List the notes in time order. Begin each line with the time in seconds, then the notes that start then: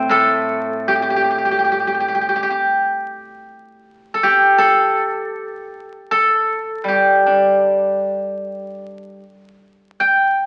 Already playing: E3 A3 C4 G4 A4
0.09 A2 A4
0.88 G4
0.95 G4
1.02 G4
1.10 G4
1.16 G4
1.24 G4
1.31 G4
1.38 G4
1.45 G4
1.51 G4
1.59 G4
1.64 G4
1.72 G4
1.80 G4
1.87 G4
1.94 G4
2.00 G4
2.08 G4
2.15 G4
2.21 G4
2.29 G4
2.36 G4
2.43 G4
2.50 G4
4.14 A4
4.23 G4
4.58 A4
6.11 A4
6.84 G3
6.88 G4
7.26 D4
10.00 G5